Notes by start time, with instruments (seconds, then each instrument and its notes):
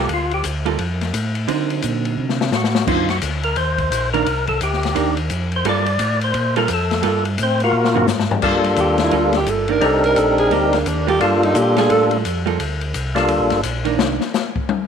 0.09 tonewheel organ D2, kick, ride
0.14 tonewheel organ F4
0.31 tonewheel organ G4, ride
0.44 tonewheel organ D2, kick, hi-hat pedal, ride
0.65 hollow-body jazz guitar G3 A#3 F4 A4, ride
0.79 tonewheel organ F2, kick, ride
1.01 snare, ride
1.13 tonewheel organ A2, kick, hi-hat pedal, ride
1.35 ride
1.48 hollow-body jazz guitar D3 F#3 C4 D#4, tonewheel organ D3, kick, ride
1.70 ride
1.82 tonewheel organ A#2, kick, hi-hat pedal, ride
2.05 ride
2.18 tonewheel organ C3
2.29 snare
2.41 snare
2.51 tonewheel organ A2, snare, hi-hat pedal
2.55 tonewheel organ F#4
2.64 snare
2.75 snare
2.87 tonewheel organ F#2 F4, hollow-body jazz guitar D3 F#3 C4 D#4, kick, crash
3.09 tonewheel organ F#4, snare, ride
3.22 tonewheel organ D2, kick, hi-hat pedal, ride
3.43 tonewheel organ A#4, ride
3.56 tonewheel organ D#2 C5, kick, ride
3.78 kick, ride
3.91 tonewheel organ A#1, kick, hi-hat pedal, ride
4.13 hollow-body jazz guitar D#3 A#3 D4, tonewheel organ A#4, ride
4.26 tonewheel organ C2, kick, ride
4.47 tonewheel organ A4, kick, ride
4.61 tonewheel organ D2 G4, kick, hi-hat pedal, ride
4.73 snare
4.83 snare, ride
4.95 tonewheel organ D#2, hollow-body jazz guitar D#3 A#3 D4, kick, ride
5.17 ride
5.30 tonewheel organ F2, kick, hi-hat pedal, ride
5.52 ride
5.56 tonewheel organ C5
5.65 tonewheel organ G2, hollow-body jazz guitar G3 A#3 F4 A4, kick, ride
5.69 tonewheel organ D5
5.86 ride
5.99 tonewheel organ A2, kick, hi-hat pedal, ride
6.21 tonewheel organ C5, ride
6.34 tonewheel organ A#2, kick, ride
6.56 hollow-body jazz guitar G3 A#3 F4 A4, tonewheel organ A#4, ride
6.68 tonewheel organ F2, kick, hi-hat pedal, ride
6.73 tonewheel organ A4
6.91 snare, ride
7.02 tonewheel organ G2, hollow-body jazz guitar G3 A#3 F4 A4, kick, ride
7.25 ride
7.38 tonewheel organ A2, kick, hi-hat pedal, ride
7.43 tonewheel organ C4 C5
7.60 tonewheel organ A#3 F4 F#4 A#4, ride
7.73 tonewheel organ A#2
7.85 snare
7.95 hollow-body jazz guitar D3 A#3 C4 F#4, floor tom
8.07 tonewheel organ G#2, snare, hi-hat pedal
8.20 snare
8.31 floor tom
8.42 tonewheel organ G2 G3 A#3 D4 F4 A4, kick, crash
8.64 ride
8.76 tonewheel organ D#2, alto saxophone G4, kick, hi-hat pedal, ride
8.98 snare, ride
9.02 alto saxophone E4
9.11 tonewheel organ D2, hollow-body jazz guitar G3 A#3 F4 A4, kick, ride
9.16 alto saxophone F4
9.33 snare, ride
9.37 alto saxophone G4
9.46 tonewheel organ G1, alto saxophone A4, kick, hi-hat pedal, ride
9.68 hollow-body jazz guitar D#3 A#3 D4, alto saxophone A#4, ride
9.80 tonewheel organ C2 G3 C4 D4 D#4 A#4, kick, ride
9.85 alto saxophone A4
10.04 alto saxophone A#4, ride
10.16 tonewheel organ A#1, alto saxophone A4, kick, hi-hat pedal, ride
10.38 alto saxophone G#4, ride
10.51 tonewheel organ D2, hollow-body jazz guitar A#3 D4, alto saxophone G4, kick, ride
10.73 alto saxophone A#3, snare, ride
10.86 tonewheel organ D#2, alto saxophone D4, kick, hi-hat pedal, ride
11.07 hollow-body jazz guitar G3 A#3 F4 A4, alto saxophone G4, ride
11.20 tonewheel organ G2 G3 A#3 D4 F4 A4, alto saxophone F4, kick, ride
11.43 alto saxophone D#4, ride
11.55 tonewheel organ A#2, alto saxophone G4, kick, hi-hat pedal, ride
11.77 hollow-body jazz guitar G3 F4 A4, alto saxophone G#4, snare, ride
11.90 tonewheel organ A2, alto saxophone A4, kick, ride
12.11 ride
12.25 tonewheel organ F2, kick, hi-hat pedal, ride
12.46 hollow-body jazz guitar G3 A#3 F4 A4, ride
12.60 tonewheel organ D2, kick, ride
12.81 ride
12.94 tonewheel organ C2, kick, hi-hat pedal, ride
13.15 tonewheel organ G3 A#3 D4 F4 A4, snare, ride
13.28 tonewheel organ D2, kick, ride
13.40 tonewheel organ A#1
13.50 tonewheel organ G1, snare, ride
13.63 tonewheel organ A#1, kick, hi-hat pedal, ride
13.85 hollow-body jazz guitar D#3 A#3 D4, ride
13.98 tonewheel organ C2, snare
14.21 snare
14.34 snare, hi-hat pedal
14.56 kick
14.69 high tom